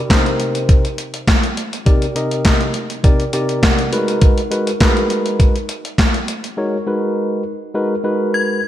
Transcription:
0.09 C3 D4 G4 A#4 C5, kick, snare, clap, closed hi-hat
0.16 D#4
0.26 closed hi-hat
0.40 closed hi-hat
0.55 closed hi-hat
0.69 kick, closed hi-hat
0.85 closed hi-hat
0.98 closed hi-hat
1.14 closed hi-hat
1.28 kick, snare, clap, closed hi-hat
1.43 closed hi-hat
1.57 closed hi-hat
1.73 closed hi-hat
1.86 C3 D#4 G4 A#4 D5, kick, closed hi-hat
2.02 closed hi-hat
2.16 C3 D#4 G4 A#4 D#5, closed hi-hat
2.31 closed hi-hat
2.45 kick, snare, clap, closed hi-hat
2.61 closed hi-hat
2.74 closed hi-hat
2.90 closed hi-hat
3.04 C3 D#4 G4 A#4 D5, kick, closed hi-hat
3.20 closed hi-hat
3.33 C3 D#4 G4 A#4 D5 A#5, closed hi-hat
3.49 closed hi-hat
3.63 F#5, kick, snare, clap, closed hi-hat
3.79 closed hi-hat
3.92 G#3 D#4 F#4 A#4 B4, closed hi-hat
4.08 closed hi-hat
4.22 kick, closed hi-hat
4.38 closed hi-hat
4.51 G#3 D#4 F#4 A#4 B4, closed hi-hat
4.67 closed hi-hat
4.80 G#3 D#4 F#4 A#4 B4, kick, snare, clap, closed hi-hat
4.97 closed hi-hat
5.10 closed hi-hat
5.26 closed hi-hat
5.40 kick, closed hi-hat
5.56 closed hi-hat
5.69 closed hi-hat
5.85 closed hi-hat
5.98 kick, snare, clap, closed hi-hat
6.14 closed hi-hat
6.28 closed hi-hat
6.44 closed hi-hat
6.57 G#3 D#4 F#4 A#4 C#5
6.87 G#3 D#4 F#4 A#4 B4
7.74 G#3 D#4 F#4 A#4 B4
8.04 G#3 D#4 F#4 A#4 B4
8.34 G#6

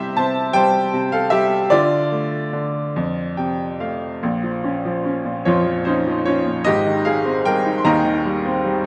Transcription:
Already playing: C3 G3 E4 G4 C5 E5
0.17 C3 C5 A5
0.53 G3 C5 G5
0.93 C3
1.12 A4 F5
1.30 G3 G4 E5
1.70 D3 F4 D5
2.12 A3
2.53 D3
2.96 F2
3.37 C3 G5
3.80 A3 F5
4.23 A#1 A#2
4.43 F3
4.64 C#4
4.85 F3
5.05 C#4
5.25 A#2
5.45 F2 F3 F4 C#5
5.66 F3
5.85 C#4 D#4 C5
6.07 F3
6.25 C#4 F4 C#5
6.46 A#2
6.64 G#1 G#2 G4 D#5
6.87 D#3
7.05 G#3 G#4 F5
7.25 C4
7.45 G3 A#4 G5
7.65 D#4
7.78 C6
7.84 D#2 D#3 D#5 A#5
8.05 D#3
8.25 G3
8.45 C4
8.65 G3

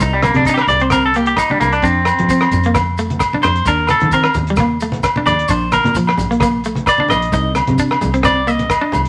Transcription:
0.00 C2 D#4, muted clean electric guitar stroke, kick, closed hi-hat, maracas
0.13 G3
0.22 A#3, cross-stick, closed hi-hat, high conga, low agogo, maracas
0.34 C3 D4, closed hi-hat, high conga, low conga
0.45 D#4, kick, closed hi-hat, maracas
0.49 D4
0.54 G4, cross-stick
0.58 A#4, low agogo
0.67 C2 D5, closed hi-hat, low conga, maracas
0.80 C4 C5, closed hi-hat
0.90 C4 A#4, kick, cross-stick, closed hi-hat, high conga, low agogo, maracas
1.06 A4
1.14 A#3 G4, closed hi-hat, maracas
1.26 G4, closed hi-hat
1.36 D#4, kick, cross-stick, closed hi-hat, low agogo, maracas
1.50 G3 D4, high conga
1.60 C2 A#3, closed hi-hat, low conga, low agogo, maracas
1.72 D4, closed hi-hat
1.82 F2 C4 D4, kick, closed hi-hat, maracas
2.05 cross-stick, closed hi-hat, low agogo, maracas
2.19 F3, closed hi-hat, low conga
2.29 C4, kick, closed hi-hat, maracas
2.41 cross-stick, low agogo
2.51 F2, kick, closed hi-hat, low conga, maracas
2.64 A#3, closed hi-hat
2.74 muted clean electric guitar stroke, kick, cross-stick, closed hi-hat, high conga, low agogo, maracas
2.97 A3, closed hi-hat, maracas
3.10 closed hi-hat, high conga
3.19 kick, cross-stick, closed hi-hat, low agogo, maracas
3.33 D4, high conga
3.42 F2 C5, cross-stick, closed hi-hat, low conga, low agogo, maracas
3.56 closed hi-hat
3.65 D#2 D4 A#4, kick, closed hi-hat, maracas
3.87 A4, cross-stick, closed hi-hat, high conga, low agogo, maracas
4.00 D#3, closed hi-hat, high conga, low conga
4.11 C4 A#4, kick, closed hi-hat, maracas
4.23 cross-stick, low agogo
4.34 D#2, closed hi-hat, low conga, maracas
4.47 G3, closed hi-hat
4.56 kick, cross-stick, closed hi-hat, high conga, low agogo, maracas
4.60 A#3
4.80 A3, closed hi-hat, maracas
4.92 closed hi-hat, high conga
5.03 kick, cross-stick, closed hi-hat, low agogo, maracas
5.16 D4, high conga
5.26 D#2 D5, closed hi-hat, low conga, low agogo, maracas
5.39 closed hi-hat
5.48 A#1 D4 C5, kick, closed hi-hat, maracas
5.72 A#4, cross-stick, closed hi-hat, high conga, low agogo, maracas
5.84 A#2, closed hi-hat, high conga, low conga
5.95 F3, kick, closed hi-hat, maracas
6.07 cross-stick, low agogo
6.17 A#1, kick, closed hi-hat, low conga, maracas
6.31 A#3, closed hi-hat
6.40 A#3, kick, cross-stick, closed hi-hat, high conga, low agogo, maracas
6.64 A3, closed hi-hat, maracas
6.75 closed hi-hat, high conga
6.86 D5, kick, cross-stick, closed hi-hat, low agogo, maracas
6.98 D4, high conga
7.08 A#1 D#5, cross-stick, closed hi-hat, low conga, low agogo, maracas
7.22 closed hi-hat
7.32 C2 D#4, kick, closed hi-hat, maracas
7.55 cross-stick, closed hi-hat, high conga, low agogo, maracas
7.67 C3, closed hi-hat, high conga, low conga
7.78 D4, kick, closed hi-hat, maracas
7.91 cross-stick, low agogo
8.01 C2, closed hi-hat, low conga, maracas
8.14 C4, closed hi-hat
8.23 C4 D5, kick, cross-stick, closed hi-hat, high conga, low agogo, maracas
8.47 A#3 D#5, closed hi-hat, maracas
8.59 closed hi-hat, high conga
8.70 kick, cross-stick, closed hi-hat, low agogo, maracas
8.81 D4
8.92 C2, closed hi-hat, low conga, low agogo, maracas
9.05 closed hi-hat

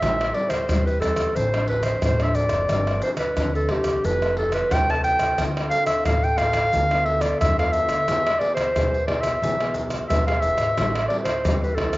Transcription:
Already playing: E5
0.01 A1 A2 G3 C4 E4, pandeiro, tamborim, maracas, surdo
0.21 pandeiro, tamborim, maracas
0.34 G3 C4 E4 D5, pandeiro
0.49 C5, pandeiro, tamborim, maracas, surdo
0.69 E2 E3 G3 C4 E4, pandeiro, tamborim, maracas, surdo
0.86 B4, pandeiro, maracas
1.00 E2 G3 C4 E4 A4, pandeiro, tamborim, maracas
1.16 pandeiro, tamborim, maracas, surdo
1.35 A1 A2 F3 C4 D4 C5, pandeiro, maracas, surdo
1.54 F3 C4 D4, pandeiro, tamborim, maracas
1.68 B4, pandeiro, surdo
1.83 C5, pandeiro, tamborim, maracas
2.02 A1 A2 C5, pandeiro, tamborim, maracas, surdo
2.20 F3 C4 D4 E5, pandeiro, tamborim, maracas
2.35 D5, pandeiro, maracas, surdo
2.49 F#1, pandeiro, tamborim, maracas, surdo
2.69 G1 G2 F3 C4 D4, pandeiro, tamborim, maracas, surdo
2.87 pandeiro, tamborim, maracas
3.02 C5, pandeiro, maracas
3.17 B4, pandeiro, tamborim, maracas, surdo
3.36 D2 D3 F3 C4 D4, pandeiro, tamborim, maracas, surdo
3.55 A4, pandeiro, maracas
3.69 C2 F3 C4 D4 G4, pandeiro, tamborim
3.84 pandeiro, tamborim, maracas, surdo
4.04 F1 F3 C4 E4 A4 B4, pandeiro, maracas, surdo
4.22 C4 E4 A4, pandeiro, tamborim, maracas
4.37 A4, pandeiro, surdo
4.52 B4, pandeiro, tamborim, maracas
4.71 C2 C3 G5, pandeiro, tamborim, maracas, surdo
4.90 C4 E4 A4 A5, pandeiro, tamborim, maracas
5.04 G5, pandeiro, maracas, surdo
5.19 C2, pandeiro, tamborim, maracas, surdo
5.38 D2 D3 C4 F4 A4, pandeiro, tamborim, maracas, surdo
5.57 pandeiro, tamborim, maracas
5.70 C4 F4 A4 F5, pandeiro, maracas
5.86 E5, pandeiro, tamborim, maracas, surdo
6.05 A1 A2 C4 F4 A4 F5, pandeiro, tamborim, maracas, surdo
6.23 G5, pandeiro, maracas
6.37 A1 C4 F4 A4 F5, pandeiro, tamborim, maracas
6.53 pandeiro, tamborim, maracas, surdo
6.73 D2 D3 B3 F4 A4, pandeiro, maracas, surdo
6.91 B3 F4 A4, pandeiro, tamborim, maracas
7.05 E5, pandeiro, surdo
7.21 D5, pandeiro, tamborim, maracas
7.40 F2 D3 E5, pandeiro, tamborim, maracas, surdo
7.59 B3 F4 A4 F5, pandeiro, tamborim, maracas
7.72 E5, pandeiro, maracas
7.89 D2, pandeiro, tamborim, maracas, surdo
8.08 E2 E3 B3 E4 G#4, pandeiro, tamborim, maracas, surdo
8.27 pandeiro, tamborim, maracas
8.39 B3 E4 G#4 D5, pandeiro
8.54 C5, pandeiro, tamborim, maracas, surdo
8.76 B1 B2 B3 E4 G#4, pandeiro, tamborim, maracas, surdo
8.94 pandeiro, maracas
9.07 B1 B3 E4 G#4 D5, pandeiro, tamborim
9.21 E5, pandeiro, tamborim, maracas, surdo
9.42 B1 E3 B3 E4 G#4, pandeiro, maracas, surdo
9.60 B3 E4 G#4, pandeiro, tamborim, maracas
9.74 pandeiro, maracas, surdo
9.90 pandeiro, tamborim, maracas
10.08 B1 B2 B3 E4 G#4 E5, pandeiro, tamborim, maracas, surdo
10.27 B3 E4 G#4 F5, pandeiro, tamborim, maracas
10.40 E1 E5, pandeiro, maracas, surdo
10.57 G#1, pandeiro, tamborim, maracas, surdo
10.77 A1 A2 G3 C4 E4, pandeiro, tamborim, maracas, surdo
10.96 pandeiro, tamborim, maracas
11.08 G3 C4 E4 D5, pandeiro
11.24 C5, pandeiro, tamborim, maracas, surdo
11.44 E2 E3 G3 C4 E4, pandeiro, tamborim, maracas, surdo
11.62 B4, pandeiro, maracas
11.75 C2 G3 C4 E4 A4, pandeiro, tamborim
11.93 pandeiro, tamborim, maracas, surdo

